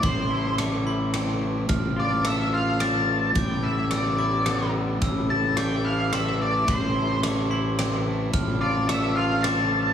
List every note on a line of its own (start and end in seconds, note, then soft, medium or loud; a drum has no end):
0.00 1.66 A1 medium
0.00 1.42 A2 medium
0.00 3.33 C3 soft
0.00 1.67 E3 soft
0.00 0.57 A3 soft
0.00 3.33 A3 soft
0.00 1.14 C4 soft
0.00 0.29 E4 medium
0.00 1.67 E4 medium
0.00 0.55 C5 medium
0.00 0.59 C6 medium
0.00 kick medium
0.00 ride soft
0.30 0.85 E4 soft
0.58 1.40 A3 soft
0.58 0.86 D6 medium
0.58 cross-stick medium
0.58 ride soft
0.86 1.69 E4 medium
0.86 1.42 C6 soft
1.14 1.70 C4 medium
1.14 cross-stick medium
1.14 ride soft
1.41 1.69 A3 soft
1.69 3.32 A1 medium
1.69 3.08 A2 medium
1.69 3.34 F3 soft
1.69 3.35 D4 medium
1.69 2.25 F6 medium
1.69 kick medium
1.69 ride soft
1.96 2.51 F4 soft
1.96 2.27 D5 medium
2.24 3.07 A3 soft
2.24 2.54 E5 medium
2.24 2.80 E6 medium
2.24 cross-stick medium
2.24 ride soft
2.53 3.36 F4 soft
2.53 2.82 F5 medium
2.80 3.36 C4 soft
2.80 3.36 A5 medium
2.80 3.34 D6 medium
2.80 cross-stick medium
2.80 ride soft
3.08 3.36 A3 soft
3.35 4.99 A1 medium
3.35 4.74 A2 soft
3.35 5.00 D3 soft
3.35 5.00 G3 soft
3.35 5.00 B3 soft
3.35 8.30 E4 medium
3.35 3.65 G5 medium
3.35 3.91 D6 medium
3.35 kick medium
3.35 ride soft
3.63 4.18 E4 soft
3.63 3.92 E5 medium
3.91 4.73 G3 soft
3.91 4.71 D5 soft
3.91 4.19 E6 soft
3.91 cross-stick medium
3.91 ride soft
4.18 5.29 E4 soft
4.18 4.74 D6 soft
4.46 5.02 B3 medium
4.46 cross-stick medium
4.46 ride soft
4.74 5.02 G3 soft
5.02 6.65 A1 medium
5.02 6.67 A2 soft
5.02 9.93 C3 soft
5.02 8.31 E3 soft
5.02 8.31 A3 soft
5.02 5.58 E6 medium
5.02 kick medium
5.02 ride soft
5.29 5.84 E4 soft
5.29 5.57 A5 medium
5.57 6.39 A3 medium
5.57 5.86 G5 medium
5.57 6.13 D6 medium
5.57 cross-stick medium
5.57 ride soft
5.85 6.94 E4 medium
5.85 6.13 F5 medium
6.13 7.78 C4 soft
6.13 6.39 E5 medium
6.13 6.67 C6 medium
6.13 cross-stick medium
6.13 ride soft
6.40 7.21 A3 soft
6.40 6.70 D5 medium
6.67 8.31 A1 medium
6.67 8.06 A2 medium
6.67 7.20 C5 medium
6.67 7.24 C6 medium
6.67 kick medium
6.67 ride soft
6.95 7.49 E4 medium
7.23 8.05 A3 medium
7.23 7.51 D6 medium
7.23 cross-stick medium
7.23 ride soft
7.50 8.34 E4 medium
7.50 8.06 C6 medium
7.78 8.34 C4 medium
7.78 cross-stick medium
7.78 ride soft
8.06 8.34 A3 soft
8.33 9.93 A1 medium
8.33 9.72 A2 medium
8.33 9.93 F3 soft
8.33 9.93 A3 soft
8.33 9.93 D4 medium
8.33 8.89 F6 medium
8.33 kick medium
8.33 ride soft
8.61 9.16 F4 medium
8.61 8.87 D5 medium
8.89 9.70 A3 medium
8.89 9.15 E5 medium
8.89 9.44 E6 medium
8.89 cross-stick medium
8.89 ride soft
9.16 9.93 F4 medium
9.16 9.42 F5 medium
9.43 9.93 C4 medium
9.43 9.93 A5 medium
9.43 9.93 D6 medium
9.43 cross-stick medium
9.43 ride soft
9.72 9.93 A3 soft